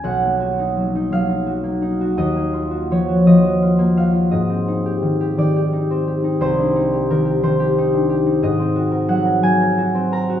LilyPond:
\new Staff \with { instrumentName = "Harp" } { \time 6/8 \key ces \lydian \tempo 4. = 57 << { <ees'' fis'' aes''>4. f''4. | ees''4 des''8 ees''4 f''8 | ees''4. d''4. | c''4 bes'8 c''4. |
ees''4 ges''8 aes''4 bes''8 | } \\ { <b,, ges>16 ais16 fis'16 dis'16 fis16 dis'16 fis16 dis'16 fis'16 ais16 dis'16 fis'16 | ees,16 bes16 f'16 ges'16 f16 ges'16 f16 ges'16 f'16 bes16 ges'16 f'16 | aes,16 c'16 ees'16 g'16 ees16 g'16 ees16 g'16 ees'16 c'16 g'16 ees'16 | c,16 d'16 ees'16 g'16 ees16 g'16 ees16 g'16 ees'16 d'16 g'16 ees'16 |
aes,16 c'16 ges'16 bes'16 ges16 bes'16 ges16 bes'16 ges'16 c'16 bes'16 ges'16 | } >> }